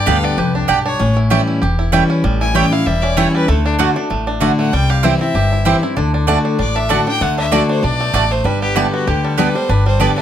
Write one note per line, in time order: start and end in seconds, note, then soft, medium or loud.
0.00 0.35 G2 medium
0.00 1.03 G3 medium
0.00 0.38 G4 medium
0.06 0.33 D2 medium
0.06 0.36 D3 medium
0.06 0.37 G3 medium
0.06 0.16 B3 medium
0.06 0.37 B3 loud
0.06 0.51 D4 medium
0.06 0.16 G4 medium
0.06 0.37 G4 loud
0.06 0.17 D5 medium
0.06 0.26 F5 medium
0.06 0.17 G5 medium
0.24 0.66 B3 medium
0.24 0.40 D5 medium
0.38 0.64 C2 medium
0.38 0.67 F2 medium
0.38 0.69 G4 medium
0.38 0.55 B4 medium
0.55 0.84 D4 medium
0.55 0.71 D4 medium
0.68 0.95 B1 medium
0.68 0.99 G2 medium
0.68 0.78 B3 medium
0.68 0.78 G4 medium
0.68 1.03 G4 medium
0.68 0.86 G4 medium
0.68 0.78 D5 medium
0.68 0.79 G5 loud
0.86 1.00 D4 medium
0.86 1.15 C#5 medium
0.99 1.38 A1 medium
0.99 1.59 A2 medium
0.99 1.65 C#4 medium
1.17 1.46 E4 medium
1.30 1.61 E3 medium
1.30 1.61 G3 medium
1.30 1.40 A3 medium
1.30 1.61 C#4 loud
1.30 1.41 E4 medium
1.30 1.61 E4 medium
1.30 1.60 G4 medium
1.30 1.41 C#5 medium
1.30 1.41 G5 loud
1.47 1.78 E4 medium
1.62 2.00 E1 medium
1.62 2.22 E2 medium
1.62 2.06 G4 medium
1.79 2.21 E4 medium
1.92 2.22 E3 medium
1.92 2.23 G3 medium
1.92 2.02 A3 medium
1.92 2.23 C#4 loud
1.92 2.03 E4 medium
1.92 2.23 E4 loud
1.92 2.03 C#5 medium
1.92 2.03 G5 loud
2.10 2.52 C#4 medium
2.24 2.62 A1 loud
2.24 2.83 A2 loud
2.24 2.55 G3 medium
2.41 2.71 E4 medium
2.41 2.56 G#5 loud
2.54 2.71 E3 medium
2.54 2.71 G3 medium
2.54 2.86 G3 medium
2.54 2.65 A3 medium
2.54 2.71 C#4 loud
2.54 2.65 E4 loud
2.54 2.70 E4 loud
2.54 2.65 C#5 medium
2.54 2.74 G5 medium
2.54 2.65 G5 loud
2.71 2.86 C#4 soft
2.71 2.85 E4 medium
2.71 3.15 E4 medium
2.71 2.87 F5 loud
2.86 3.24 E1 medium
2.86 3.46 E2 medium
2.86 3.31 G3 medium
2.86 3.04 E5 medium
3.02 3.46 C#4 medium
3.02 3.18 D5 medium
3.17 3.47 E3 medium
3.17 3.47 G3 medium
3.17 3.27 A3 medium
3.17 3.47 C#4 loud
3.17 3.27 E4 loud
3.17 3.49 E4 medium
3.17 3.47 E4 loud
3.17 3.34 C#5 medium
3.17 3.27 C#5 loud
3.17 3.27 G5 loud
3.35 3.48 G3 medium
3.35 3.50 B4 medium
3.48 3.86 D2 loud
3.48 3.77 D3 loud
3.48 3.78 A3 medium
3.48 3.65 A4 medium
3.65 3.74 D4 medium
3.65 3.95 D4 medium
3.79 3.95 D3 medium
3.79 3.89 A3 medium
3.79 3.95 A3 medium
3.79 4.09 A3 medium
3.79 3.96 D4 loud
3.79 3.89 F#4 medium
3.79 3.94 F#4 loud
3.79 3.89 D5 loud
3.79 3.89 F#5 loud
3.95 4.26 D4 medium
3.95 4.10 D4 medium
3.95 4.10 F#4 medium
4.10 4.49 A1 medium
4.10 4.70 A2 medium
4.10 4.55 A3 medium
4.27 4.41 D4 medium
4.40 4.71 D3 medium
4.40 4.51 A3 medium
4.40 4.71 A3 medium
4.40 4.71 D4 medium
4.40 4.73 D4 medium
4.40 4.51 F#4 medium
4.40 4.72 F#4 loud
4.40 4.51 D5 loud
4.40 4.51 F#5 loud
4.59 4.73 A3 medium
4.59 4.75 F#5 medium
4.73 5.11 C2 medium
4.73 5.32 C3 loud
4.73 5.17 G3 medium
4.73 4.91 G5 loud
4.90 5.32 G4 medium
4.90 5.06 F5 medium
5.03 5.20 E3 loud
5.03 5.20 G3 medium
5.03 5.13 C4 medium
5.03 5.20 C4 medium
5.03 5.13 E4 medium
5.03 5.48 E4 medium
5.03 5.20 E4 loud
5.03 5.13 C5 loud
5.03 5.20 E5 medium
5.03 5.14 G5 medium
5.20 5.63 C4 medium
5.20 5.35 C4 medium
5.20 5.34 E4 medium
5.20 5.86 E5 loud
5.34 5.72 G1 medium
5.34 5.94 G2 medium
5.34 5.65 G4 medium
5.52 5.82 E4 medium
5.65 5.82 E3 medium
5.65 5.82 G3 medium
5.65 5.75 C4 medium
5.65 5.82 C4 medium
5.65 5.75 E4 medium
5.65 5.80 E4 loud
5.65 5.97 G4 medium
5.65 5.75 C5 medium
5.65 5.76 G5 medium
5.82 5.97 C4 soft
5.82 5.96 E4 medium
5.96 6.35 D2 medium
5.96 6.26 D3 medium
5.96 6.14 D4 medium
6.14 6.27 D4 medium
6.27 6.57 D3 medium
6.27 6.37 A3 medium
6.27 6.58 A3 medium
6.27 6.45 D4 medium
6.27 6.58 D4 medium
6.27 6.37 F#4 medium
6.27 6.58 F#4 loud
6.27 6.38 D5 loud
6.27 6.38 A5 loud
6.45 6.59 D4 medium
6.59 6.97 A1 medium
6.59 7.18 A2 medium
6.59 6.76 D4 medium
6.59 6.77 D5 medium
6.76 6.90 D4 medium
6.76 6.92 E5 loud
6.89 7.06 D3 medium
6.89 6.99 A3 medium
6.89 7.06 A3 medium
6.89 7.07 D4 medium
6.89 7.07 D4 loud
6.89 7.00 F#4 medium
6.89 7.05 F#4 loud
6.89 7.00 D5 loud
6.89 7.07 F#5 medium
6.89 7.00 A5 loud
7.07 7.38 D4 medium
7.07 7.21 D4 soft
7.07 7.20 F#4 medium
7.07 7.23 G5 loud
7.21 7.59 D2 medium
7.21 7.50 D3 loud
7.21 8.00 A3 medium
7.21 7.38 F#5 loud
7.38 7.52 D4 medium
7.38 7.56 E5 medium
7.51 7.81 D3 medium
7.51 7.62 A3 medium
7.51 7.82 A3 loud
7.51 7.69 D4 medium
7.51 7.82 D4 loud
7.51 7.62 F#4 loud
7.51 7.82 F#4 loud
7.51 7.62 D5 loud
7.51 7.69 D5 medium
7.51 7.62 A5 loud
7.69 7.84 D4 medium
7.69 7.85 C5 medium
7.83 8.10 B1 medium
7.83 8.12 B2 medium
7.83 8.14 D4 medium
7.83 8.33 D5 loud
8.00 8.30 A3 medium
8.13 8.40 A1 medium
8.13 8.43 A2 medium
8.13 8.24 A3 medium
8.13 9.38 D4 medium
8.13 8.24 F#4 medium
8.13 8.24 D5 medium
8.13 8.24 A5 medium
8.31 8.45 A3 medium
8.31 8.46 C5 medium
8.44 8.83 G1 medium
8.44 9.04 G2 medium
8.44 9.24 G3 medium
8.44 8.61 B4 medium
8.62 8.92 B3 medium
8.62 8.77 G4 medium
8.75 9.05 D3 medium
8.75 9.06 G3 medium
8.75 8.86 B3 medium
8.75 9.06 B3 medium
8.75 8.92 E4 medium
8.75 8.86 G4 loud
8.75 9.07 G4 medium
8.75 9.06 G4 loud
8.75 8.86 D5 medium
8.75 8.86 A5 loud
8.93 9.36 B3 medium
8.93 9.08 F#4 medium
9.07 9.45 D2 medium
9.07 9.37 D3 medium
9.07 9.25 G4 medium
9.07 10.22 G4 medium
9.24 9.55 G3 medium
9.24 9.40 A4 medium
9.38 9.54 D3 medium
9.38 9.54 G3 loud
9.38 9.48 B3 medium
9.38 9.55 B3 medium
9.38 9.68 D4 medium
9.38 9.48 G4 medium
9.38 9.54 G4 medium
9.38 9.57 B4 medium
9.38 9.48 D5 medium
9.38 9.48 A5 medium
9.55 9.86 G3 medium
9.55 9.69 B3 medium
9.55 9.69 G4 medium
9.55 9.71 C5 loud
9.69 10.07 G1 loud
9.69 10.22 G2 loud
9.69 10.14 D4 medium
9.69 9.86 B4 medium
9.86 10.22 G3 medium
9.86 10.02 C5 medium
10.00 10.22 D3 medium
10.00 10.22 G3 medium
10.00 10.10 B3 medium
10.00 10.22 B3 loud
10.00 10.22 B3 medium
10.00 10.10 G4 medium
10.00 10.22 G4 medium
10.00 10.17 D5 medium
10.00 10.10 D5 medium
10.00 10.10 A5 loud
10.18 10.22 D4 medium
10.18 10.22 E5 loud